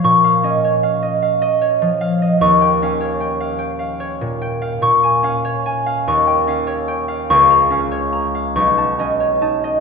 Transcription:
Already playing: F3 C#4 C#5 F5
0.04 A#2 C#6
0.24 F5
0.43 C#4 D#5
0.64 C#5
0.83 F5
1.03 D#5
1.22 F5
1.42 D#5
1.61 C#5
1.82 F3
2.01 F5
2.22 D#5
2.41 D#2 C#6
2.61 G5
2.82 C#4 F5
3.01 C#5
3.20 G5
3.40 F5
3.59 G5
3.79 F5
4.00 C#5
4.21 A#2
4.42 G5
4.62 F5
4.82 A#2 C#6
5.03 G#5
5.23 C#4 F5
5.45 C#5
5.66 G#5
5.86 F5
6.07 D#2 C#6
6.27 G5
6.47 C#4 F5
6.67 C#5
6.88 G5
7.08 F5
7.30 C#2 C#6
7.50 A#5
7.70 C#4 F5
7.91 C#5
8.13 A#5
8.35 F5
8.55 B1 C#6
8.78 A5
8.99 C#4 D#5
9.20 C#5
9.41 D#4 A5
9.64 D#5

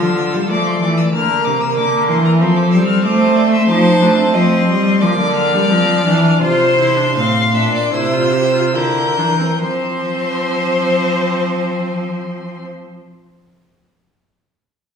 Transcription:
Already playing: F4 A4 E6
0.02 D3
0.34 G3
0.49 F3 A3 D5 D6
0.66 C6
0.81 E3 D6
0.97 E6
1.13 D3 A#3 A#4 F6
1.45 C3 D6
1.61 E6
1.77 D3 A#4 D6
2.08 E3 C6
2.25 A#5
2.40 F3 C4 A4 C6
2.57 D6
2.72 G3 E6
2.87 F6
3.04 A3 C5 D6
3.36 D5 C6
3.52 E5
3.68 F3 D#4 C5 A5
4.01 A3 D4
4.18 C4
4.34 F3 D#5 C6
4.67 G3
5.01 F3 A#3 D5 D6
5.19 D3
5.36 F6
5.53 G3
5.70 F3 C4
6.05 E3 D4
6.41 C3 F4 C5 C6
6.78 E4
6.96 D4
7.15 A2 C4 F5
7.53 A#2 D4 E5
7.75 D5
7.92 C3 E4 C5 E6
8.13 F4
8.32 G4
8.53 F4
8.74 D3 E4 A#4 G6
9.18 E3 D4
9.39 C4
9.62 F3 C4 C5 C6

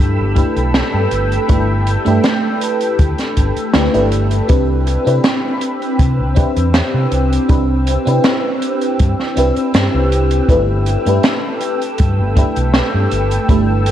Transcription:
Already playing: A3 D4 E4 G4 A4 B4 G5 B5 E6
0.00 G2
0.19 G1
0.35 A3 D4 E4 G4 B4, kick, closed hi-hat
0.57 B1, closed hi-hat
0.74 snare, closed hi-hat
0.94 G2
1.11 G1, closed hi-hat
1.32 closed hi-hat
1.48 G1 A3 D4 E4 G4 B4, kick, closed hi-hat
1.87 closed hi-hat
2.05 G2 A3 D4 E4 G4 B4, closed hi-hat
2.24 snare, closed hi-hat
2.61 closed hi-hat
2.81 closed hi-hat
2.99 D2, kick, closed hi-hat
3.18 snare, closed hi-hat
3.37 G1, kick, closed hi-hat
3.56 muted fingered electric bass stroke, closed hi-hat
3.73 D2 A3 D4 E4 G4 B4, snare, closed hi-hat
3.93 G1 A3 D4 E4 G4 B4, closed hi-hat
4.12 closed hi-hat
4.31 closed hi-hat
4.48 C2 C4 D4 E4 G4 B4 G5 B5 E6, kick, closed hi-hat
4.87 closed hi-hat
5.04 C3 C4 D4 E4 G4 B4, closed hi-hat
5.24 snare, closed hi-hat
5.61 closed hi-hat
5.82 closed hi-hat
5.99 C3, kick, closed hi-hat
6.19 C2
6.35 C4 D4 E4 G4 B4, kick, closed hi-hat
6.56 E2, closed hi-hat
6.74 snare, closed hi-hat
6.94 C3
7.12 C2, closed hi-hat
7.33 closed hi-hat
7.48 C2 C4 D4 E4 G4 B4, kick, closed hi-hat
7.87 closed hi-hat
8.05 C3 C4 D4 E4 G4 B4, closed hi-hat
8.24 snare, closed hi-hat
8.62 closed hi-hat
8.81 closed hi-hat
8.99 G2, kick, closed hi-hat
9.19 snare
9.35 C2 C4 D4 E4 G4 B4, closed hi-hat
9.56 muted fingered electric bass stroke, closed hi-hat
9.74 G2, snare, closed hi-hat
9.94 C2
10.12 closed hi-hat
10.31 closed hi-hat
10.48 G1 A3 D4 E4 G4 A4 B4 B5, kick, closed hi-hat
10.86 closed hi-hat
11.05 G2 A3 D4 E4 G4 B4, closed hi-hat
11.23 snare, closed hi-hat
11.61 closed hi-hat
11.82 closed hi-hat
11.98 G2, kick, closed hi-hat
12.19 G1
12.36 A3 D4 E4 G4 B4, kick, closed hi-hat
12.56 B1, closed hi-hat
12.74 snare, closed hi-hat
12.94 G2
13.11 G1, closed hi-hat
13.31 closed hi-hat
13.48 G1 A3 D4 E4 G4 B4, kick, closed hi-hat
13.86 closed hi-hat

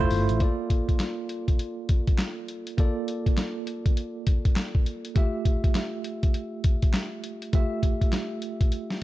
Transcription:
0.00 A3 E4 F4 C5
0.10 G1, open hi-hat, tambourine, shaker
0.29 A1, closed hi-hat, shaker
0.39 A#3 F4 A4 D5, kick, closed hi-hat
0.70 kick, closed hi-hat
0.89 kick, closed hi-hat
1.00 snare, clap, closed hi-hat
1.29 closed hi-hat
1.48 kick, closed hi-hat
1.59 closed hi-hat
1.89 kick, closed hi-hat
2.07 kick, closed hi-hat
2.18 snare, clap, closed hi-hat
2.48 closed hi-hat
2.67 closed hi-hat
2.78 A#3 F4 A4 D5, kick, closed hi-hat
3.08 closed hi-hat
3.26 kick, closed hi-hat
3.37 snare, clap, closed hi-hat
3.67 closed hi-hat
3.86 kick, closed hi-hat
3.97 closed hi-hat
4.27 kick, closed hi-hat
4.45 kick, closed hi-hat
4.56 snare, clap, closed hi-hat
4.75 kick
4.86 closed hi-hat
5.05 closed hi-hat
5.15 A3 F4 G4 E5, kick, closed hi-hat
5.45 kick, closed hi-hat
5.64 kick, closed hi-hat
5.75 snare, clap, closed hi-hat
6.04 closed hi-hat
6.23 kick, closed hi-hat
6.34 closed hi-hat
6.64 kick, closed hi-hat
6.82 kick, closed hi-hat
6.93 snare, clap, closed hi-hat
7.24 closed hi-hat
7.42 closed hi-hat
7.53 A3 F4 G4 E5, kick, closed hi-hat
7.83 kick, closed hi-hat
8.01 kick, closed hi-hat
8.12 snare, clap, closed hi-hat
8.42 closed hi-hat
8.61 kick, closed hi-hat
8.72 closed hi-hat
8.90 snare

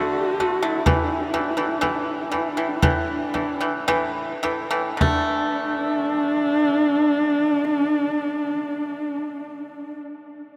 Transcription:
Already playing: D3 A3 F#4
0.40 D3 A3, frame drum
0.62 D3 A3 E4
0.86 A2 E3 D4, frame drum
0.96 E4
1.04 D4
1.13 E4
1.21 D4
1.31 A2 E3 E4, frame drum
1.40 D4
1.50 E4
1.57 A2 E3 D4
1.68 E4
1.78 A2 E3 D4
1.83 E4, frame drum
1.96 D4
2.04 E4
2.11 D4
2.22 E4
2.30 A2 E3 D4, frame drum
2.38 E4
2.48 D4
2.57 A2 E3 E4
2.68 D4
2.77 E4
2.82 A2 E3, frame drum
2.87 D4
2.97 E4
3.08 D4
3.34 A2 E3, frame drum
3.61 A2 E3
3.88 A2 E3, frame drum
4.43 A2 E3, frame drum
4.71 A2 E3
4.97 D3 A3, frame drum
5.02 D4

